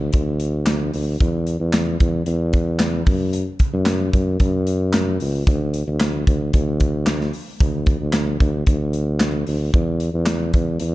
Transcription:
0.00 0.12 D2 medium
0.13 0.90 D2 medium
0.13 kick medium
0.13 closed hi-hat medium
0.40 closed hi-hat medium
0.66 snare loud
0.66 clap medium
0.66 closed hi-hat medium
0.94 1.19 D2 medium
0.94 open hi-hat medium
1.20 1.58 E2 medium
1.20 kick loud
1.20 closed hi-hat medium
1.47 closed hi-hat medium
1.60 1.97 E2 loud
1.73 snare loud
1.73 clap medium
1.73 closed hi-hat medium
2.00 2.25 E2 medium
2.00 kick medium
2.00 closed hi-hat medium
2.26 3.03 E2 loud
2.26 closed hi-hat medium
2.53 kick medium
2.53 closed hi-hat medium
2.79 snare loud
2.79 clap medium
2.79 closed hi-hat medium
3.06 3.44 F#2 medium
3.06 kick medium
3.06 open hi-hat medium
3.33 closed hi-hat medium
3.59 kick medium
3.59 closed hi-hat medium
3.73 4.11 F#2 loud
3.86 snare loud
3.86 clap medium
3.86 closed hi-hat medium
4.13 4.38 F#2 loud
4.13 kick medium
4.13 closed hi-hat medium
4.40 5.16 F#2 loud
4.40 kick medium
4.40 closed hi-hat medium
4.67 closed hi-hat medium
4.93 snare loud
4.93 clap medium
4.93 closed hi-hat medium
5.20 5.45 C#2 medium
5.20 open hi-hat medium
5.47 5.84 D2 loud
5.47 kick loud
5.47 closed hi-hat medium
5.74 closed hi-hat medium
5.87 6.25 D2 medium
6.00 snare loud
6.00 clap medium
6.00 closed hi-hat medium
6.27 6.52 D2 medium
6.27 kick medium
6.27 closed hi-hat medium
6.53 7.30 D2 loud
6.53 kick medium
6.53 closed hi-hat medium
6.80 kick medium
6.80 closed hi-hat medium
7.06 snare loud
7.06 clap medium
7.06 closed hi-hat medium
7.21 snare soft
7.33 open hi-hat medium
7.60 7.98 D2 medium
7.60 kick loud
7.60 closed hi-hat medium
7.86 kick loud
7.86 closed hi-hat medium
8.01 8.38 D2 loud
8.13 snare loud
8.13 clap medium
8.13 closed hi-hat medium
8.40 8.65 D2 loud
8.40 kick medium
8.40 closed hi-hat medium
8.67 9.43 D2 loud
8.67 kick medium
8.67 closed hi-hat medium
8.93 closed hi-hat medium
9.20 snare loud
9.20 clap medium
9.20 closed hi-hat medium
9.47 9.72 D2 medium
9.47 open hi-hat medium
9.74 10.11 E2 loud
9.74 kick loud
9.74 closed hi-hat medium
10.00 closed hi-hat medium
10.14 10.51 E2 loud
10.26 snare loud
10.26 clap medium
10.26 closed hi-hat medium
10.54 10.79 E2 medium
10.54 kick medium
10.54 closed hi-hat medium
10.80 10.95 E2 loud
10.80 closed hi-hat medium

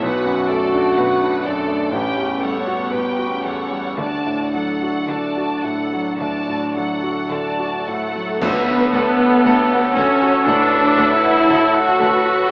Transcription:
0.01 1.89 B1 medium
0.01 0.83 B1 medium
0.01 0.83 B2 medium
0.01 1.40 F#4 medium
0.01 0.47 F#4 soft
0.01 0.47 B4 medium
0.01 0.46 F#5 medium
0.25 0.63 F#2 soft
0.49 0.87 A3 soft
0.49 0.97 A4 soft
0.49 0.97 D5 soft
0.74 1.12 D4 soft
0.97 1.79 B2 medium
0.97 1.45 F#4 soft
0.97 1.45 B4 soft
0.97 1.36 B4 soft
0.97 1.45 F#5 soft
1.22 1.60 D4 soft
1.44 1.83 F#2 soft
1.44 1.93 D4 medium
1.44 1.93 A4 soft
1.44 1.93 D5 soft
1.68 1.93 A3 soft
1.92 3.94 A1 medium
1.92 2.79 A1 medium
1.92 2.78 A2 medium
1.92 2.57 C#4 medium
1.92 2.39 G4 soft
1.92 2.38 B4 soft
1.92 2.39 G5 medium
2.17 2.57 E2 soft
2.42 2.83 G3 soft
2.42 2.93 A4 soft
2.42 2.93 C#5 soft
2.42 2.93 F#5 soft
2.59 3.27 B3 medium
2.67 3.08 F#4 soft
2.91 3.83 A2 medium
2.91 3.45 G4 soft
2.91 3.33 B4 soft
2.91 3.45 B4 soft
2.91 3.45 G5 soft
3.18 3.61 F#4 soft
3.30 4.00 C#4 medium
3.44 3.87 E2 soft
3.44 3.99 A4 soft
3.44 3.99 C#5 soft
3.44 3.99 F#5 soft
3.71 3.98 G3 soft
3.98 6.15 D2 soft
3.98 4.94 D2 medium
3.98 4.93 D3 medium
3.98 7.71 D4 medium
3.98 4.51 F#4 soft
3.98 4.50 D5 soft
3.98 4.50 A5 soft
4.26 4.70 A2 soft
4.53 4.98 F#3 soft
4.53 5.09 A4 soft
4.53 5.09 F#5 soft
4.82 5.26 F#4 soft
5.08 6.04 D3 medium
5.08 5.64 F#4 soft
5.08 5.53 A4 soft
5.08 5.64 D5 soft
5.08 5.64 A5 soft
5.37 5.81 F#4 soft
5.63 6.08 A2 soft
5.63 6.20 A4 soft
5.63 6.19 F#5 soft
5.93 6.37 F#3 soft
6.18 8.38 D2 soft
6.18 7.16 D3 soft
6.18 6.72 F#4 soft
6.18 6.71 D5 soft
6.18 6.71 A5 soft
6.48 6.92 A2 soft
6.75 7.21 F#3 soft
6.75 7.31 A4 soft
6.75 7.31 F#5 soft
7.03 7.47 F#4 soft
7.30 8.26 D3 soft
7.30 7.87 F#4 soft
7.30 7.76 A4 soft
7.30 7.87 D5 soft
7.30 7.87 A5 soft
7.59 8.04 F#4 soft
7.86 8.31 A2 soft
7.86 8.37 A3 medium
7.86 8.38 A3 medium
7.86 8.41 A4 soft
7.86 8.40 F#5 soft
7.86 8.41 F#5 soft
8.15 8.41 F#3 soft
8.41 8.49 D2 medium
8.41 10.43 D2 medium
8.41 9.93 D3 medium
8.41 12.51 F#3 medium
8.41 9.93 B3 medium
8.41 9.96 B3 medium
8.41 12.47 A4 medium
8.41 8.49 A4 medium
8.41 8.89 B4 medium
8.41 8.49 F#5 medium
8.41 12.47 A5 medium
8.41 concert bass drum medium
8.41 crash medium
8.68 9.09 A3 medium
8.93 9.01 D2 medium
8.93 9.02 A4 soft
8.93 9.46 A4 medium
8.93 9.35 A4 soft
8.93 9.02 F#5 soft
9.20 9.61 F#5 medium
9.45 9.53 D2 medium
9.45 9.54 D2 medium
9.45 9.97 G4 medium
9.45 9.53 A4 medium
9.45 9.53 F#5 medium
9.45 9.86 A5 medium
9.72 10.12 F#5 medium
9.96 10.04 D2 medium
9.96 10.46 C#4 medium
9.96 10.47 C#4 medium
9.96 10.46 F#4 medium
9.96 10.04 A4 soft
9.96 10.37 A4 medium
9.96 10.04 F#5 medium
10.22 10.62 F#4 medium
10.46 10.54 D2 medium
10.46 10.55 D2 medium
10.46 10.87 A2 medium
10.46 11.14 D4 medium
10.46 10.54 A4 soft
10.46 11.46 B4 medium
10.46 10.55 F#5 medium
10.73 11.13 A3 soft
10.97 11.05 D2 medium
10.97 11.38 A4 medium
10.97 11.06 A4 medium
10.97 11.06 F#5 medium
11.14 11.82 E4 medium
11.14 11.83 E4 medium
11.23 11.64 F#5 medium
11.48 11.56 D2 medium
11.48 11.57 D2 medium
11.48 12.00 A4 medium
11.48 11.57 A4 medium
11.48 11.57 F#5 medium
11.48 11.89 A5 medium
11.73 12.15 F#5 medium
11.82 12.49 F#4 medium
11.82 12.51 F#4 medium
11.99 12.07 D2 medium
11.99 12.08 D2 medium
11.99 12.40 A4 medium
11.99 12.08 A4 medium
11.99 12.50 B4 medium
11.99 12.08 F#5 soft
12.25 12.51 F#4 medium

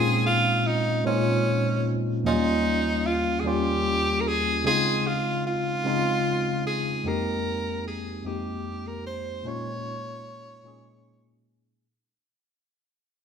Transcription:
0.00 0.88 A#2 medium
0.00 0.89 G#3 medium
0.00 0.89 C4 medium
0.00 0.89 C#4 medium
0.00 0.90 D#4 medium
0.00 0.90 F4 medium
0.00 0.26 G#4 loud
0.26 0.68 F4 loud
0.66 1.05 D#4 medium
1.04 2.08 A#2 medium
1.04 2.09 G#3 medium
1.04 2.09 C#4 medium
1.04 1.91 C#4 medium
1.04 2.10 D#4 medium
1.04 2.10 F4 medium
1.04 2.09 C5 medium
2.24 3.28 D#2 medium
2.24 2.31 F#3 medium
2.24 3.29 A#3 medium
2.24 3.30 C#4 medium
2.24 3.07 D#4 loud
2.24 3.30 F4 medium
2.31 3.32 G3 medium
3.06 3.41 F4 loud
3.40 4.48 D#2 medium
3.40 3.49 G#4 medium
3.44 4.49 G3 medium
3.44 4.49 A#3 medium
3.44 4.50 C#4 medium
3.44 4.50 F4 medium
3.44 4.22 G4 loud
4.20 4.29 A#4 medium
4.27 4.66 G#4 loud
4.64 5.68 C#3 medium
4.64 5.69 G#3 medium
4.64 5.69 C4 medium
4.64 5.70 D#4 medium
4.64 5.70 F4 medium
4.64 5.08 G#4 loud
5.06 5.45 F4 medium
5.47 6.62 F4 loud
5.84 6.88 C#3 medium
5.84 6.89 G#3 medium
5.84 6.89 C4 medium
5.84 6.90 D#4 medium
5.84 6.90 F4 medium
6.67 7.09 G#4 medium
7.04 8.08 F2 medium
7.04 8.09 G#3 medium
7.04 8.09 A#3 medium
7.04 8.09 C4 medium
7.04 8.10 D#4 medium
7.04 8.10 G4 medium
7.04 7.86 A#4 loud
7.87 8.28 G#4 medium
8.23 9.28 F2 medium
8.23 9.29 G#3 medium
8.23 9.29 A#3 medium
8.23 9.29 C4 medium
8.23 9.30 D#4 medium
8.23 8.89 G4 medium
8.23 9.30 G4 medium
8.87 9.06 A#4 medium
9.07 9.49 C5 medium
9.43 10.48 A#2 medium
9.43 10.48 G#3 medium
9.43 10.49 A#3 medium
9.43 10.49 C#4 medium
9.43 10.50 D#4 medium
9.43 10.50 F4 medium
9.43 11.46 C#5 loud
10.63 11.68 A#2 medium
10.63 11.68 G#3 medium
10.63 11.69 A#3 medium
10.63 11.69 C#4 medium
10.63 11.69 D#4 medium
10.67 11.70 G#4 medium

